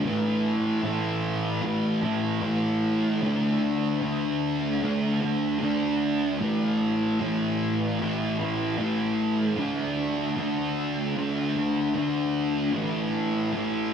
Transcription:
0.04 0.82 A2 loud
0.04 0.82 E3 loud
0.04 0.85 A3 medium
0.83 1.61 A2 medium
0.83 1.62 E3 medium
0.83 1.64 A3 medium
1.62 2.40 A2 medium
1.62 2.03 E3 medium
1.62 2.01 A3 medium
2.02 2.41 E3 medium
2.02 2.43 A3 medium
2.41 3.19 A2 medium
2.41 3.19 E3 medium
2.41 3.23 A3 medium
3.21 4.00 D3 medium
3.21 4.02 A3 loud
3.21 4.03 D4 medium
4.01 4.80 D3 medium
4.01 4.83 A3 medium
4.01 4.83 D4 medium
4.81 5.58 D3 medium
4.81 5.23 A3 medium
4.81 5.20 D4 loud
5.21 5.61 A3 medium
5.21 5.61 D4 medium
5.59 6.37 D3 medium
5.59 6.41 A3 medium
5.59 6.38 D4 medium
6.40 7.18 A2 medium
6.40 7.20 E3 medium
6.40 7.22 A3 loud
7.19 7.98 A2 medium
7.19 7.99 E3 medium
7.19 8.01 A3 medium
7.99 8.76 A2 medium
7.99 8.40 E3 medium
7.99 8.38 A3 loud
8.38 8.78 E3 medium
8.38 8.80 A3 medium
8.77 9.54 A2 medium
8.77 9.55 E3 medium
8.77 9.59 A3 medium
9.57 10.35 D3 medium
9.57 10.37 A3 medium
9.57 10.38 D4 loud
10.36 11.15 D3 medium
10.36 11.17 A3 medium
10.36 11.18 D4 medium
11.17 11.93 D3 medium
11.17 11.58 A3 loud
11.17 11.54 D4 loud
11.55 11.95 A3 medium
11.55 11.95 D4 medium
11.94 12.71 D3 medium
11.94 12.73 A3 medium
11.94 12.72 D4 medium
12.72 13.51 A2 medium
12.72 13.53 E3 medium
12.72 13.54 A3 loud
13.52 13.94 A2 medium
13.52 13.94 E3 medium
13.52 13.94 A3 medium

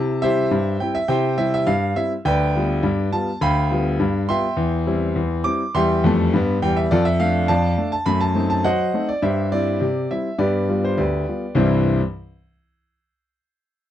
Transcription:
0.00 0.18 C3 loud
0.00 0.11 E4 medium
0.00 0.23 A5 loud
0.22 0.39 G3 medium
0.22 0.39 C4 medium
0.22 0.39 E4 medium
0.22 0.77 G4 medium
0.22 0.77 C5 medium
0.22 0.80 E5 loud
0.51 0.76 G2 medium
0.80 0.97 G3 medium
0.80 0.97 C4 medium
0.80 0.97 E4 medium
0.80 0.95 G5 loud
0.95 1.08 E5 loud
1.08 1.34 C3 medium
1.08 1.26 E4 medium
1.08 1.37 C5 medium
1.08 1.36 E5 medium
1.08 1.38 G5 loud
1.38 1.54 G3 medium
1.38 1.55 C4 medium
1.38 1.54 E4 medium
1.38 1.52 E5 loud
1.54 1.68 E5 loud
1.67 1.92 G2 medium
1.67 1.96 F5 loud
1.96 2.12 G3 soft
1.96 2.12 C4 soft
1.96 2.13 E4 medium
1.96 2.11 E5 loud
2.25 2.50 D2 loud
2.25 3.09 B4 medium
2.25 3.09 D5 medium
2.25 3.13 G5 loud
2.56 2.71 G3 medium
2.56 2.72 B3 medium
2.56 2.72 F4 medium
2.83 3.08 G2 loud
3.12 3.29 G3 medium
3.12 3.29 B3 medium
3.12 3.29 F4 medium
3.12 3.42 A5 loud
3.41 3.66 D2 loud
3.41 4.25 F5 medium
3.41 4.25 G5 loud
3.41 4.29 B5 loud
3.71 3.87 G3 medium
3.71 3.87 B3 medium
3.71 3.87 F4 medium
4.00 4.24 G2 medium
4.29 4.45 G3 medium
4.29 4.45 B3 medium
4.29 4.45 F4 medium
4.29 5.42 E5 loud
4.29 5.42 G5 medium
4.29 5.45 C6 loud
4.57 4.82 E2 loud
4.86 5.03 G3 medium
4.86 5.03 C4 medium
4.86 5.03 E4 medium
5.16 5.41 E2 medium
5.44 5.61 G3 medium
5.44 5.61 C4 medium
5.44 5.61 E4 medium
5.44 5.74 D6 loud
5.75 5.98 E2 loud
5.75 5.99 G3 loud
5.75 6.58 E5 loud
5.75 6.58 G5 loud
5.75 6.62 C6 loud
6.04 6.27 F2 loud
6.04 6.28 A3 loud
6.34 6.56 G2 loud
6.34 6.58 B3 loud
6.62 6.85 E2 medium
6.62 6.86 G3 medium
6.62 6.77 G5 loud
6.77 6.91 E5 loud
6.91 7.16 F2 loud
6.91 7.05 F4 medium
6.91 7.05 A4 medium
6.91 7.05 D5 loud
7.05 7.20 E5 loud
7.20 7.36 A3 medium
7.20 7.36 D4 medium
7.20 7.48 F5 loud
7.48 7.74 F2 loud
7.48 7.90 D5 medium
7.48 7.90 F5 medium
7.48 7.91 A5 loud
7.78 7.94 A3 medium
7.78 7.94 D4 medium
7.92 8.07 A5 loud
8.06 8.31 F#2 loud
8.06 8.24 A3 medium
8.06 8.21 B5 loud
8.21 8.48 A5 loud
8.35 8.52 A3 medium
8.35 8.52 C4 medium
8.35 8.52 D#4 medium
8.50 8.65 A5 loud
8.64 8.89 F#3 medium
8.64 9.06 C5 medium
8.64 9.06 D#5 medium
8.64 9.08 F#5 loud
8.94 9.10 A3 medium
8.94 9.11 C4 medium
8.94 9.11 D#4 medium
9.09 9.23 D5 loud
9.22 9.47 G2 medium
9.22 9.51 G4 medium
9.22 9.51 C5 medium
9.22 9.52 E5 medium
9.52 9.68 G3 medium
9.52 9.69 C4 medium
9.52 9.69 E4 medium
9.52 10.10 D5 loud
9.81 10.06 C3 medium
10.11 10.27 G3 soft
10.11 10.27 C4 soft
10.11 10.27 E4 medium
10.11 10.40 E5 medium
10.38 10.64 G2 medium
10.38 10.56 B3 medium
10.38 10.80 G4 medium
10.38 10.80 B4 medium
10.38 10.83 D5 loud
10.69 10.85 G3 medium
10.69 10.85 B3 medium
10.69 10.85 F4 medium
10.84 10.99 C5 medium
10.97 11.23 D2 medium
10.97 11.53 G4 medium
10.97 11.53 B4 medium
10.97 11.57 D5 medium
11.28 11.44 G3 soft
11.28 11.44 B3 soft
11.28 11.44 F4 medium
11.55 11.88 C2 loud
11.55 11.89 G2 medium
11.55 11.89 E3 medium
11.55 11.89 G3 medium
11.55 11.89 C4 medium
11.55 11.89 E4 medium
11.55 11.89 C5 medium

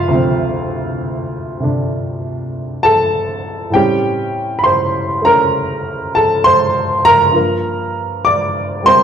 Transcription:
0.00 0.11 D4 medium
0.00 3.74 E4 medium
0.00 3.73 F4 medium
0.00 3.74 G4 medium
0.00 3.73 E5 medium
0.00 3.74 F5 medium
0.00 3.74 G5 medium
0.08 3.71 D2 medium
0.08 1.59 C3 soft
0.08 3.72 F3 medium
0.13 3.72 C4 medium
1.60 3.71 C3 soft
1.60 3.72 D3 soft
1.60 3.73 D4 soft
2.83 3.69 A4 medium
2.83 3.69 A5 medium
3.70 7.32 A2 medium
3.70 7.33 G3 soft
3.70 7.34 C4 soft
3.70 4.54 G5 medium
3.75 5.23 C#4 medium
3.75 4.55 G4 medium
4.59 4.63 B5 medium
4.64 5.20 C5 medium
4.64 5.25 C6 medium
5.22 7.33 A3 soft
5.22 7.34 C#4 soft
5.22 6.10 A#5 medium
5.26 6.11 A#4 medium
6.15 6.43 A4 medium
6.15 6.45 A5 medium
6.44 7.01 C5 medium
6.44 7.00 C6 loud
7.05 8.21 A#4 medium
7.05 8.20 A#5 loud
7.31 9.03 G2 medium
7.31 9.03 F3 soft
7.36 8.83 A#3 medium
8.25 8.82 D5 medium
8.25 8.81 D6 medium
8.83 9.03 G3 soft
8.83 9.03 A#3 soft
8.83 9.03 C4 soft
8.83 9.03 C6 loud
8.87 9.03 C5 medium

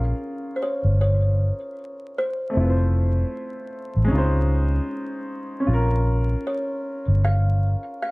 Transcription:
0.00 0.11 A#1 medium
0.00 2.49 C#4 medium
0.00 2.52 F4 medium
0.00 2.55 A#4 medium
0.00 0.59 F5 loud
0.56 0.61 C5 medium
0.62 0.80 C#5 medium
0.84 1.51 G1 medium
1.01 2.21 C#5 medium
2.18 5.25 C5 medium
2.50 4.06 A3 medium
2.50 4.07 C4 medium
2.57 3.23 F1 medium
2.57 4.09 E4 medium
2.57 4.11 F4 medium
2.63 2.67 B4 medium
2.70 4.16 C5 medium
3.96 4.10 A1 medium
4.04 5.61 G#3 medium
4.04 5.58 C#4 medium
4.11 4.79 C#2 loud
4.11 5.64 D#4 medium
4.11 5.65 F4 medium
4.18 5.68 C5 medium
5.60 8.11 C#4 medium
5.67 6.34 A#1 loud
5.67 8.11 F4 medium
5.73 8.11 A#4 medium
6.47 7.26 C#5 medium
7.08 7.74 G1 medium
7.24 8.01 F5 medium
8.02 8.11 F5 medium

